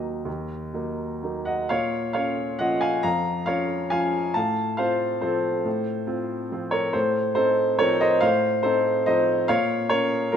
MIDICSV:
0, 0, Header, 1, 2, 480
1, 0, Start_track
1, 0, Key_signature, -5, "minor"
1, 0, Tempo, 476569
1, 265, Time_signature, 3, 2, 24, 8
1, 1713, Tempo, 444444
1, 4113, Tempo, 431344
1, 8433, Tempo, 422535
1, 11346, End_track
2, 0, Start_track
2, 0, Title_t, "Upright piano"
2, 0, Program_c, 0, 0
2, 0, Control_c, 0, 64, 127
2, 0, Note_on_c, 0, 39, 40
2, 0, Note_on_c, 0, 54, 29
2, 0, Note_on_c, 0, 58, 33
2, 0, Note_on_c, 0, 63, 31
2, 0, Note_on_c, 0, 75, 57
2, 219, Note_off_c, 0, 54, 0
2, 219, Note_off_c, 0, 58, 0
2, 223, Note_off_c, 0, 63, 0
2, 251, Note_off_c, 0, 39, 0
2, 251, Note_on_c, 0, 39, 40
2, 283, Control_c, 0, 64, 0
2, 459, Control_c, 0, 64, 127
2, 726, Note_off_c, 0, 39, 0
2, 741, Note_on_c, 0, 54, 29
2, 746, Note_on_c, 0, 58, 31
2, 750, Note_on_c, 0, 63, 31
2, 1196, Note_off_c, 0, 54, 0
2, 1198, Note_off_c, 0, 58, 0
2, 1200, Note_off_c, 0, 63, 0
2, 1237, Note_on_c, 0, 54, 28
2, 1242, Note_on_c, 0, 58, 27
2, 1244, Note_on_c, 0, 63, 30
2, 1460, Note_off_c, 0, 75, 0
2, 1463, Note_on_c, 0, 78, 58
2, 1476, Note_on_c, 0, 75, 44
2, 1672, Note_off_c, 0, 54, 0
2, 1674, Note_off_c, 0, 58, 0
2, 1675, Note_off_c, 0, 63, 0
2, 1692, Note_off_c, 0, 75, 0
2, 1703, Note_off_c, 0, 78, 0
2, 1705, Note_on_c, 0, 77, 76
2, 1715, Note_on_c, 0, 73, 54
2, 1720, Note_on_c, 0, 46, 52
2, 1733, Control_c, 0, 64, 0
2, 1915, Control_c, 0, 64, 127
2, 2160, Note_off_c, 0, 73, 0
2, 2164, Note_off_c, 0, 77, 0
2, 2180, Note_on_c, 0, 77, 69
2, 2181, Note_off_c, 0, 46, 0
2, 2192, Note_on_c, 0, 73, 52
2, 2197, Note_on_c, 0, 61, 34
2, 2204, Note_on_c, 0, 65, 41
2, 2640, Note_off_c, 0, 61, 0
2, 2644, Note_off_c, 0, 65, 0
2, 2647, Note_off_c, 0, 73, 0
2, 2671, Note_on_c, 0, 78, 77
2, 2675, Note_off_c, 0, 77, 0
2, 2685, Note_on_c, 0, 75, 53
2, 2688, Note_on_c, 0, 53, 36
2, 2696, Note_on_c, 0, 61, 37
2, 2699, Note_on_c, 0, 65, 39
2, 2908, Note_on_c, 0, 80, 73
2, 2911, Note_off_c, 0, 75, 0
2, 2920, Note_off_c, 0, 78, 0
2, 2920, Note_on_c, 0, 77, 58
2, 3124, Note_off_c, 0, 53, 0
2, 3128, Note_off_c, 0, 61, 0
2, 3130, Note_off_c, 0, 65, 0
2, 3139, Note_off_c, 0, 77, 0
2, 3148, Note_on_c, 0, 82, 86
2, 3155, Note_off_c, 0, 80, 0
2, 3156, Note_on_c, 0, 77, 59
2, 3163, Note_on_c, 0, 41, 49
2, 3183, Control_c, 0, 64, 0
2, 3338, Control_c, 0, 64, 127
2, 3595, Note_off_c, 0, 77, 0
2, 3612, Note_on_c, 0, 77, 72
2, 3619, Note_off_c, 0, 41, 0
2, 3626, Note_off_c, 0, 82, 0
2, 3626, Note_on_c, 0, 73, 51
2, 3631, Note_on_c, 0, 65, 39
2, 3632, Note_on_c, 0, 61, 36
2, 4069, Note_off_c, 0, 65, 0
2, 4070, Note_off_c, 0, 61, 0
2, 4076, Note_off_c, 0, 73, 0
2, 4088, Note_off_c, 0, 77, 0
2, 4091, Note_on_c, 0, 80, 76
2, 4104, Note_on_c, 0, 77, 61
2, 4109, Note_on_c, 0, 53, 34
2, 4113, Note_on_c, 0, 61, 35
2, 4118, Note_on_c, 0, 65, 37
2, 4555, Note_off_c, 0, 53, 0
2, 4557, Note_off_c, 0, 61, 0
2, 4559, Note_off_c, 0, 65, 0
2, 4562, Note_off_c, 0, 77, 0
2, 4579, Note_on_c, 0, 81, 71
2, 4590, Note_off_c, 0, 80, 0
2, 4594, Note_on_c, 0, 77, 46
2, 4600, Note_on_c, 0, 45, 51
2, 4621, Control_c, 0, 64, 0
2, 4782, Control_c, 0, 64, 127
2, 5037, Note_off_c, 0, 77, 0
2, 5058, Note_on_c, 0, 77, 68
2, 5059, Note_off_c, 0, 45, 0
2, 5063, Note_off_c, 0, 81, 0
2, 5073, Note_on_c, 0, 72, 55
2, 5080, Note_on_c, 0, 60, 34
2, 5083, Note_on_c, 0, 65, 43
2, 5524, Note_off_c, 0, 60, 0
2, 5526, Note_off_c, 0, 65, 0
2, 5531, Note_off_c, 0, 72, 0
2, 5550, Note_on_c, 0, 72, 57
2, 5558, Note_off_c, 0, 77, 0
2, 5566, Note_on_c, 0, 69, 47
2, 5569, Note_on_c, 0, 53, 35
2, 5574, Note_on_c, 0, 60, 38
2, 5577, Note_on_c, 0, 65, 40
2, 5997, Note_off_c, 0, 53, 0
2, 5999, Note_off_c, 0, 60, 0
2, 6001, Note_off_c, 0, 65, 0
2, 6033, Note_on_c, 0, 45, 52
2, 6060, Control_c, 0, 64, 0
2, 6215, Control_c, 0, 64, 127
2, 6495, Note_off_c, 0, 45, 0
2, 6503, Note_on_c, 0, 65, 42
2, 6506, Note_on_c, 0, 60, 40
2, 6951, Note_off_c, 0, 65, 0
2, 6953, Note_off_c, 0, 60, 0
2, 6956, Note_off_c, 0, 69, 0
2, 6993, Note_off_c, 0, 72, 0
2, 7001, Note_on_c, 0, 53, 38
2, 7003, Note_on_c, 0, 60, 37
2, 7011, Note_on_c, 0, 65, 39
2, 7215, Note_on_c, 0, 73, 70
2, 7230, Note_on_c, 0, 70, 58
2, 7433, Note_off_c, 0, 53, 0
2, 7434, Note_off_c, 0, 60, 0
2, 7438, Note_off_c, 0, 65, 0
2, 7454, Note_off_c, 0, 70, 0
2, 7460, Note_on_c, 0, 72, 68
2, 7464, Note_off_c, 0, 73, 0
2, 7472, Note_on_c, 0, 69, 49
2, 7475, Note_on_c, 0, 45, 51
2, 7496, Control_c, 0, 64, 0
2, 7684, Control_c, 0, 64, 127
2, 7909, Note_off_c, 0, 72, 0
2, 7912, Note_off_c, 0, 69, 0
2, 7926, Note_on_c, 0, 72, 78
2, 7933, Note_off_c, 0, 45, 0
2, 7940, Note_on_c, 0, 69, 53
2, 7947, Note_on_c, 0, 60, 40
2, 7950, Note_on_c, 0, 63, 46
2, 8389, Note_off_c, 0, 60, 0
2, 8390, Note_off_c, 0, 63, 0
2, 8396, Note_off_c, 0, 69, 0
2, 8411, Note_on_c, 0, 73, 81
2, 8423, Note_off_c, 0, 72, 0
2, 8426, Note_on_c, 0, 70, 62
2, 8432, Note_on_c, 0, 53, 42
2, 8437, Note_on_c, 0, 60, 39
2, 8443, Note_on_c, 0, 63, 39
2, 8657, Note_off_c, 0, 70, 0
2, 8662, Note_on_c, 0, 75, 81
2, 8667, Note_off_c, 0, 73, 0
2, 8677, Note_on_c, 0, 72, 67
2, 8869, Note_off_c, 0, 53, 0
2, 8871, Note_off_c, 0, 60, 0
2, 8874, Note_off_c, 0, 63, 0
2, 8888, Note_off_c, 0, 72, 0
2, 8888, Note_on_c, 0, 77, 86
2, 8905, Note_on_c, 0, 72, 63
2, 8906, Note_on_c, 0, 45, 56
2, 8907, Note_off_c, 0, 75, 0
2, 8935, Control_c, 0, 64, 0
2, 9143, Control_c, 0, 64, 127
2, 9348, Note_off_c, 0, 72, 0
2, 9368, Note_off_c, 0, 45, 0
2, 9369, Note_on_c, 0, 72, 77
2, 9373, Note_off_c, 0, 77, 0
2, 9383, Note_on_c, 0, 69, 58
2, 9386, Note_on_c, 0, 60, 44
2, 9393, Note_on_c, 0, 63, 48
2, 9833, Note_off_c, 0, 60, 0
2, 9837, Note_off_c, 0, 63, 0
2, 9842, Note_off_c, 0, 69, 0
2, 9859, Note_off_c, 0, 72, 0
2, 9862, Note_on_c, 0, 75, 74
2, 9876, Note_on_c, 0, 72, 60
2, 9878, Note_on_c, 0, 53, 39
2, 9885, Note_on_c, 0, 60, 40
2, 9890, Note_on_c, 0, 63, 46
2, 10318, Note_off_c, 0, 53, 0
2, 10322, Note_off_c, 0, 60, 0
2, 10324, Note_off_c, 0, 63, 0
2, 10328, Note_off_c, 0, 72, 0
2, 10338, Note_on_c, 0, 77, 92
2, 10348, Note_on_c, 0, 73, 66
2, 10355, Note_off_c, 0, 75, 0
2, 10356, Note_on_c, 0, 46, 59
2, 10380, Control_c, 0, 64, 0
2, 10528, Control_c, 0, 64, 127
2, 10790, Note_off_c, 0, 73, 0
2, 10807, Note_on_c, 0, 73, 84
2, 10814, Note_off_c, 0, 46, 0
2, 10819, Note_off_c, 0, 77, 0
2, 10821, Note_on_c, 0, 70, 61
2, 10827, Note_on_c, 0, 61, 43
2, 11266, Note_off_c, 0, 61, 0
2, 11272, Note_off_c, 0, 70, 0
2, 11289, Note_on_c, 0, 70, 75
2, 11301, Note_off_c, 0, 73, 0
2, 11305, Note_on_c, 0, 65, 55
2, 11309, Note_on_c, 0, 53, 41
2, 11346, Note_off_c, 0, 53, 0
2, 11346, Note_off_c, 0, 65, 0
2, 11346, Note_off_c, 0, 70, 0
2, 11346, End_track
0, 0, End_of_file